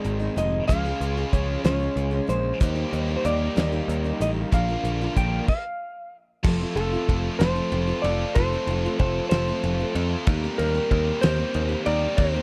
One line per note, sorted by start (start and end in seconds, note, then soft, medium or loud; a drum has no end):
0.00 0.66 G#2 medium
0.00 0.66 D#3 medium
0.00 0.21 G#3 soft
0.00 0.66 G#3 medium
0.00 0.67 G#3 loud
0.00 0.20 C4 medium
0.00 0.66 C4 medium
0.00 0.67 C4 medium
0.00 0.19 D#4 soft
0.00 0.65 D#4 medium
0.00 0.67 D#4 medium
0.00 0.18 G#4 medium
0.00 0.66 G#4 medium
0.00 0.67 G#4 medium
0.00 0.38 D5 medium
0.05 0.28 G#1 medium
0.05 closed hi-hat medium
0.19 0.35 G#3 soft
0.19 0.36 C4 soft
0.19 0.36 D#4 soft
0.19 0.36 G#4 medium
0.36 0.60 F1 loud
0.36 0.68 G#3 medium
0.36 0.69 C4 medium
0.36 0.69 D#4 medium
0.36 0.69 G#4 medium
0.36 0.67 D#5 medium
0.36 closed hi-hat medium
0.67 0.92 C#2 loud
0.67 2.58 C#3 medium
0.67 0.84 C#3 medium
0.67 0.84 F3 medium
0.67 2.58 G#3 loud
0.67 0.85 G#3 medium
0.67 2.59 G#3 medium
0.67 2.58 C#4 loud
0.67 2.59 C#4 medium
0.67 0.85 C#4 medium
0.67 2.59 F4 loud
0.67 2.59 F4 medium
0.67 2.59 G#4 medium
0.67 2.59 G#4 loud
0.67 0.84 G#4 medium
0.67 1.34 F5 loud
0.67 kick loud
0.67 closed hi-hat loud
0.85 1.18 G#3 soft
0.85 1.17 C#4 medium
0.85 1.16 G#4 medium
1.00 1.23 C#2 medium
1.00 closed hi-hat medium
1.17 1.32 G#3 soft
1.17 1.33 C#4 soft
1.17 1.33 G#4 medium
1.33 1.56 C#2 medium
1.33 1.63 F3 medium
1.33 1.64 G#3 medium
1.33 1.64 C#4 medium
1.33 1.65 G#4 medium
1.33 1.64 C#5 medium
1.33 kick medium
1.33 closed hi-hat medium
1.64 1.87 C#2 medium
1.64 1.80 C#3 medium
1.64 1.80 F3 medium
1.64 1.81 G#3 medium
1.64 1.81 C#4 medium
1.64 1.78 G#4 medium
1.64 2.29 C#5 medium
1.64 snare loud
1.64 closed hi-hat medium
1.80 2.13 G#3 soft
1.80 2.11 C#4 soft
1.80 2.10 G#4 medium
1.96 2.19 C#2 medium
1.96 closed hi-hat medium
2.11 2.27 G#3 soft
2.11 2.28 C#4 medium
2.11 2.28 G#4 medium
2.27 2.52 A#1 medium
2.27 2.60 F3 medium
2.27 2.60 G#3 medium
2.27 2.61 C#4 medium
2.27 2.61 G#4 medium
2.27 3.15 C5 medium
2.27 closed hi-hat medium
2.59 2.84 D#2 loud
2.59 4.50 D#3 medium
2.59 2.76 D#3 medium
2.59 4.51 G3 loud
2.59 4.50 A#3 medium
2.59 4.51 A#3 loud
2.59 2.77 A#3 medium
2.59 4.50 D#4 medium
2.59 4.51 D#4 loud
2.59 2.75 D#4 medium
2.59 4.50 G4 medium
2.59 4.51 G4 loud
2.59 2.74 G4 medium
2.59 4.50 A#4 medium
2.59 kick loud
2.59 closed hi-hat loud
2.75 3.09 A#3 soft
2.75 3.08 D#4 medium
2.75 3.07 G4 medium
2.93 3.16 D#2 medium
2.93 closed hi-hat medium
3.08 3.25 A#3 soft
3.08 3.25 D#4 soft
3.08 3.24 G4 medium
3.17 3.24 C5 medium
3.25 3.48 D#2 medium
3.25 3.55 D#3 medium
3.25 3.56 A#3 medium
3.25 3.56 D#4 medium
3.25 3.56 G4 medium
3.25 4.21 D5 medium
3.25 closed hi-hat medium
3.56 3.80 D#2 loud
3.56 3.72 D#3 medium
3.56 3.73 A#3 medium
3.56 3.72 D#4 medium
3.56 3.71 G4 medium
3.56 snare loud
3.56 closed hi-hat medium
3.72 4.05 A#3 soft
3.72 4.04 D#4 medium
3.72 4.03 G4 medium
3.88 4.11 D#2 medium
3.88 closed hi-hat medium
4.04 4.20 A#3 soft
4.04 4.21 D#4 soft
4.04 4.20 G4 soft
4.20 4.43 A1 medium
4.20 4.52 D#3 medium
4.20 4.52 A#3 medium
4.20 4.53 D#4 medium
4.20 4.53 G4 medium
4.20 4.30 D#5 medium
4.20 closed hi-hat medium
4.52 4.75 A#1 loud
4.52 5.46 A#2 loud
4.52 4.68 A#2 medium
4.52 5.46 D3 loud
4.52 4.68 F3 medium
4.52 5.46 F3 loud
4.52 5.47 A#3 medium
4.52 4.69 A#3 medium
4.52 5.47 A#3 loud
4.52 5.47 D4 medium
4.52 5.47 D4 loud
4.52 4.69 D4 medium
4.52 5.47 F4 medium
4.52 4.67 F4 medium
4.52 5.48 A#4 medium
4.52 5.47 A#4 loud
4.52 5.17 F5 loud
4.52 kick loud
4.52 closed hi-hat medium
4.68 5.01 A#3 soft
4.68 5.01 D4 medium
4.68 5.00 F4 medium
4.84 5.07 A#1 medium
4.84 closed hi-hat medium
5.01 5.16 A#3 soft
5.01 5.17 D4 soft
5.01 5.17 F4 medium
5.16 5.39 A#1 medium
5.16 5.48 F3 medium
5.16 5.49 A#3 medium
5.16 5.49 D4 medium
5.16 5.50 F4 medium
5.16 5.48 G5 loud
5.16 kick medium
5.16 closed hi-hat medium
5.48 6.16 F5 medium
5.48 kick loud
5.48 crash loud
6.43 6.64 F1 medium
6.43 6.60 F2 medium
6.43 6.60 C3 medium
6.43 7.41 F3 loud
6.43 6.60 F3 medium
6.43 7.07 A3 loud
6.43 6.61 A3 medium
6.43 7.08 C4 medium
6.43 6.60 C4 medium
6.43 7.09 F4 loud
6.43 6.60 F4 medium
6.43 7.09 A4 loud
6.43 kick loud
6.43 crash loud
6.61 6.75 F3 medium
6.61 6.75 A3 soft
6.61 6.76 C4 medium
6.61 6.76 F4 medium
6.76 6.95 F1 loud
6.76 6.92 F3 medium
6.76 6.92 A3 medium
6.76 6.92 C4 medium
6.76 6.91 F4 medium
6.76 7.42 A4 medium
6.76 ride medium
6.92 7.39 F3 soft
6.92 7.40 A3 medium
6.92 7.40 C4 medium
6.92 7.40 F4 medium
7.08 7.28 F1 medium
7.08 7.40 A3 medium
7.08 7.40 C4 medium
7.08 7.39 F4 medium
7.08 7.38 A4 medium
7.08 kick medium
7.08 ride medium
7.39 7.59 F1 medium
7.39 7.56 F2 medium
7.39 7.56 C3 medium
7.39 7.56 F3 medium
7.39 8.35 F3 medium
7.39 8.35 A3 medium
7.39 7.56 A3 medium
7.39 8.05 C4 medium
7.39 7.55 C4 medium
7.39 8.03 F4 medium
7.39 7.54 F4 medium
7.39 8.03 A4 medium
7.39 8.05 C5 medium
7.39 snare loud
7.39 ride loud
7.55 7.70 F3 soft
7.55 7.71 A3 soft
7.55 7.72 C4 medium
7.55 7.71 F4 medium
7.71 7.91 F1 loud
7.71 7.87 F3 medium
7.71 7.88 A3 medium
7.71 7.87 C4 medium
7.71 7.86 F4 medium
7.71 ride medium
7.87 8.36 F3 soft
7.87 8.36 A3 soft
7.87 8.36 C4 medium
7.87 8.35 F4 medium
8.02 8.23 F1 loud
8.02 8.36 C4 medium
8.02 8.36 F4 medium
8.02 8.36 A4 medium
8.02 8.36 D5 medium
8.02 ride medium
8.35 8.55 F1 loud
8.35 8.52 F2 medium
8.35 8.52 C3 medium
8.35 9.31 F3 loud
8.35 8.52 F3 medium
8.35 8.99 A3 loud
8.35 8.52 A3 medium
8.35 9.00 C4 loud
8.35 8.52 C4 medium
8.35 9.00 F4 loud
8.35 8.52 F4 medium
8.35 9.00 A4 loud
8.35 8.98 C5 loud
8.35 kick loud
8.35 ride loud
8.53 8.67 F3 soft
8.53 8.68 A3 medium
8.53 8.68 C4 medium
8.53 8.68 F4 medium
8.67 8.86 F1 medium
8.67 8.84 F3 medium
8.67 8.84 A3 medium
8.67 8.84 C4 medium
8.67 8.84 F4 medium
8.67 ride medium
8.85 9.31 F3 medium
8.85 9.32 A3 medium
8.85 9.31 C4 medium
8.85 9.32 F4 medium
8.99 9.19 F1 medium
8.99 9.32 A3 medium
8.99 9.32 C4 medium
8.99 9.31 F4 medium
8.99 9.31 A4 medium
8.99 9.28 C5 loud
8.99 kick medium
8.99 ride medium
9.29 9.51 F1 medium
9.29 9.47 F2 medium
9.29 9.47 C3 medium
9.29 9.48 F3 medium
9.29 9.48 A3 medium
9.29 9.47 C4 medium
9.29 9.97 C4 medium
9.29 9.95 F4 loud
9.29 9.94 A4 medium
9.29 9.98 C5 loud
9.29 snare loud
9.29 ride loud
9.33 10.26 F3 medium
9.33 10.26 A3 medium
9.33 9.47 F4 medium
9.48 9.62 F3 soft
9.48 9.63 A3 medium
9.48 9.63 C4 medium
9.48 9.63 F4 medium
9.63 9.83 F1 medium
9.63 9.79 F3 medium
9.63 9.79 A3 medium
9.63 9.79 C4 medium
9.63 9.78 F4 medium
9.63 ride medium
9.79 10.27 F3 soft
9.79 10.28 A3 medium
9.79 10.27 C4 medium
9.79 10.27 F4 medium
9.95 10.14 F2 medium
9.95 10.27 C4 medium
9.95 10.25 F4 medium
9.95 10.25 A4 medium
9.95 ride medium
10.27 10.46 D#2 loud
10.27 11.24 D#3 loud
10.27 10.43 D#3 medium
10.27 10.91 G3 loud
10.27 10.90 A#3 loud
10.27 10.43 A#3 medium
10.27 10.44 C4 medium
10.27 10.91 G4 loud
10.27 10.42 G4 medium
10.27 10.91 A#4 loud
10.27 kick loud
10.27 ride loud
10.44 10.59 A#3 soft
10.44 10.60 C4 medium
10.44 10.59 G4 medium
10.58 10.78 D#2 medium
10.58 10.75 D#3 medium
10.58 10.75 A#3 medium
10.58 10.74 C4 medium
10.58 10.73 G4 medium
10.58 11.24 A#4 loud
10.58 ride medium
10.74 11.21 A#3 soft
10.74 11.22 C4 soft
10.74 11.22 G4 medium
10.90 11.10 D#2 loud
10.90 11.23 G3 medium
10.90 11.22 A#3 medium
10.90 11.22 G4 medium
10.90 11.22 A#4 medium
10.90 kick medium
10.90 ride medium
11.21 11.43 D#2 medium
11.21 11.38 D#3 medium
11.21 12.17 D#3 medium
11.21 11.87 G3 medium
11.21 11.38 A#3 medium
11.21 12.18 A#3 medium
11.21 11.37 C4 medium
11.21 11.86 G4 loud
11.21 11.35 G4 loud
11.21 11.86 A#4 medium
11.21 11.82 C5 loud
11.21 snare loud
11.21 ride loud
11.36 11.54 A#3 soft
11.36 11.54 C4 medium
11.36 11.53 G4 medium
11.54 11.74 D#2 medium
11.54 11.70 D#3 medium
11.54 11.71 A#3 medium
11.54 11.70 C4 medium
11.54 11.67 G4 medium
11.54 ride medium
11.69 12.18 A#3 soft
11.69 12.18 C4 soft
11.69 12.17 G4 medium
11.86 12.06 D#2 medium
11.86 12.18 G3 medium
11.86 12.18 G4 medium
11.86 12.19 A#4 medium
11.86 12.19 D5 loud
11.86 ride medium
12.17 12.38 D#2 loud
12.17 12.34 D#3 medium
12.17 12.42 D#3 loud
12.17 12.42 G3 loud
12.17 12.42 A#3 loud
12.17 12.34 A#3 medium
12.17 12.35 C4 medium
12.17 12.42 G4 loud
12.17 12.33 G4 medium
12.17 12.42 A#4 loud
12.17 12.42 C5 loud
12.17 kick loud
12.17 ride loud
12.34 12.42 A#3 soft
12.34 12.42 C4 medium
12.34 12.42 G4 medium